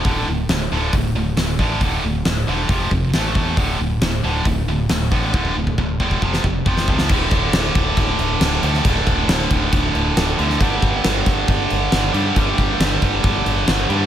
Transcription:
<<
  \new Staff \with { instrumentName = "Distorted electric guitar" } { \clef bass \time 4/4 \key d \minor \tempo 4 = 136 <d, a, d>8 <d, a,>8 <d, a,>8 <d, a, d>8 <d, a,>8 <d, a,>8 <d, a,>8 <d, a, d>8 | <d, a, d>8 <d, a,>8 <d, a,>8 <d, a, d>8 <f, c f>8 <f, c>8 <a, e a>8 <a, e a>8 | <d, a, d>8 <d, a,>8 <d, a,>8 <d, a, d>8 <d, a,>8 <d, a,>8 <d, a,>8 <d, a, d>8 | <d, a, d>8 <d, a,>8 <d, a,>8 <d, a, d>8 <f, c f>8 <f, c>8 <f, c f>8 <f, c f>8 |
<d, a, d>2.~ <d, a, d>8 <d, a, d>8 | <d, a, d>2.~ <d, a, d>8 <d, a, d>8 | <g, d g>2.~ <g, d g>8 <g, d g>8 | <g, d g>2.~ <g, d g>8 <g, d g>8 | }
  \new Staff \with { instrumentName = "Fingered electric bass" } { \clef bass \time 4/4 \key d \minor d,,8 d,,8 d,,8 d,,8 d,,8 d,,8 d,,8 a,,8 | d,,8 d,,8 d,,8 e,,8 f,,8 f,,8 a,,8 e,8 | d,,8 d,,8 d,,8 d,,8 d,,8 d,,8 d,,8 a,,8 | d,,8 d,,8 d,,8 e,,8 f,,8 f,,8 f,,8 cis,8 |
d,,8 d,,8 d,,8 d,,8 d,,8 d,,8 d,,8 d,8 | d,,8 d,,8 d,,8 d,,8 d,,8 d,,8 d,,8 d,8 | g,,8 g,,8 g,,8 g,,8 g,,8 g,,8 g,,8 g,8 | g,,8 g,,8 g,,8 g,,8 g,,8 g,,8 g,,8 g,8 | }
  \new DrumStaff \with { instrumentName = "Drums" } \drummode { \time 4/4 <hho bd>4 <hho sn>4 <hho bd>4 <hho sn>8 bd8 | <hho bd>4 <hho sn>4 <hho bd>8 bd8 <hho sn>8 bd8 | <hho bd>4 <hho sn>4 <hho bd>4 <hho sn>8 bd8 | bd16 bd8 bd16 bd8 bd16 bd16 bd16 sn16 bd8 bd16 sn16 bd16 sn16 |
<cymc bd>8 <cymc bd>8 <cymc sn>8 <cymc bd>8 <cymc bd>8 cymc8 <cymc sn>8 cymc16 sn16 | <cymc bd>8 <cymc bd>8 <cymc sn>8 <cymc bd>8 <cymc bd>8 cymc8 <cymc sn>8 cymc16 sn16 | <cymc bd>8 <cymc bd>8 <cymc sn>8 <cymc bd sn>8 <cymc bd>8 cymc8 <cymc sn>8 cymc8 | <cymc bd>8 <cymc bd>8 <cymc sn>8 <cymc bd>8 <cymc bd>8 cymc8 <cymc sn>8 cymc8 | }
>>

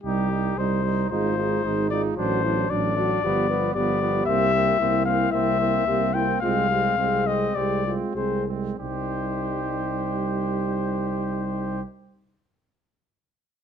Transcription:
<<
  \new Staff \with { instrumentName = "Trumpet" } { \time 4/4 \key c \minor \tempo 4 = 108 g'4 c''4 c''4. d''8 | c''4 d''2 d''4 | e''4. f''8 e''4. g''8 | f''4. ees''8 d''8 r8 c''8 r8 |
c''1~ | c''1 | }
  \new Staff \with { instrumentName = "French horn" } { \time 4/4 \key c \minor r2 f'4 ees'8 f'8 | fis'8 e'8 d'8 fis'8 g'8 b'8 g'4~ | g'4 e'2 g'8 e'8 | f'8 g'8 aes'4 g'8 f'8 aes'8 r8 |
ees'1~ | ees'1 | }
  \new Staff \with { instrumentName = "Trumpet" } { \time 4/4 \key c \minor ees'8 ees'8 ees'8 ees'8 ees'8 ees'8 ees'8 ees'8 | d'8 d'8 d'8 d'8 b8 b8 b8 b8 | c'8 c'8 c'8 c'8 c'8 c'8 c'8 c'8 | c'8 c'8 c'8 c'8 c'8 c'8 c'8 c'8 |
g'1~ | g'1 | }
  \new Staff \with { instrumentName = "Trombone" } { \clef bass \time 4/4 \key c \minor g8 g8 g8 g8 aes8 aes8 aes8 aes8 | fis8 fis8 fis8 fis8 f8 f8 f8 f8 | bes8 bes8 bes8 bes8 bes8 bes8 bes8 bes8 | aes8 aes8 aes8 aes8 aes8 aes8 aes8 aes8 |
g1~ | g1 | }
  \new Staff \with { instrumentName = "Tuba" } { \clef bass \time 4/4 \key c \minor c,4 c,4 aes,,4 aes,,4 | a,,4 a,,4 g,,4 g,,4 | c,4 c,4 c,4 c,4 | c,4 c,4 c,4 c,4 |
c,1~ | c,1 | }
>>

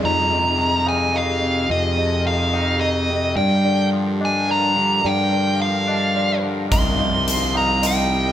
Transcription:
<<
  \new Staff \with { instrumentName = "Lead electric guitar" } { \time 3/4 \key f \dorian \tempo 4 = 108 bes''4. aes''8 f''4 | ees''4 f''4 ees''4 | g''4 r8 aes''8 bes''4 | g''4 f''4. r8 |
c'''4. bes''8 g''4 | }
  \new Staff \with { instrumentName = "Felt piano" } { \time 3/4 \key f \dorian ees''8 ees''4 f''8 ees''4 | ees''8 ees''4 f''8 ees''4 | d''8 d''4 ees''8 d''4 | d''8 d''4 ees''8 d''4 |
ees''8 ees''4 f''8 ees''4 | }
  \new Staff \with { instrumentName = "String section" } { \time 3/4 \key f \dorian << { <f' g' ees''>2.~ | <f' g' ees''>2. | <bes' f''>2.~ | <bes' f''>2.~ |
<bes' f''>2. | } \\ { <f aes'>2.~ | <f aes'>2. | g2.~ | g2. |
<c g ees''>2. | } >> }
  \new Staff \with { instrumentName = "Clean electric guitar" } { \clef bass \time 3/4 \key f \dorian f,8 c8 ees8 ees'8 ees8 c8 | f,8 c8 ees8 ees'8 ees8 c8 | g,8 d8 f8 d'8 f8 d8 | g,8 d8 f8 d'8 f8 d8 |
c8 f8 f8 ees'8 f8 c8 | }
  \new Staff \with { instrumentName = "Fingered electric bass" } { \clef bass \time 3/4 \key f \dorian f,2. | f,2. | g,2. | g,2. |
c,2. | }
  \new DrumStaff \with { instrumentName = "Drums" } \drummode { \time 3/4 r4 r4 r4 | r4 r4 r4 | r4 r4 r4 | r4 r4 r4 |
<hh bd>4 hh4 hh4 | }
>>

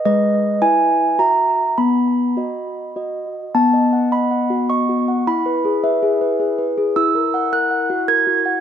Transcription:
\new Staff \with { instrumentName = "Handbells" } { \time 3/4 \key b \major \tempo 4 = 105 << { dis''4 gis''4 ais''4 | b''2 r4 | a''4 b''4 cis'''4 | b''4 e''4. r8 |
e'''4 fis'''4 gis'''4 | } \\ { <gis b'>4 <e' b' e''>4 <fis' e''>4 | b4 <fis' dis''>4 <fis' dis''>4 | \tuplet 3/2 { b8 dis''8 fis''8 dis''8 fis''8 fis'8 dis''8 fis'8 fis''8 } | \tuplet 3/2 { e'8 b'8 gis'8 b'8 gis'8 b'8 gis'8 b'8 gis'8 } |
\tuplet 3/2 { e'8 ais'8 fis''8 ais'8 fis''8 fis'8 ais'8 fis'8 fis''8 } | } >> }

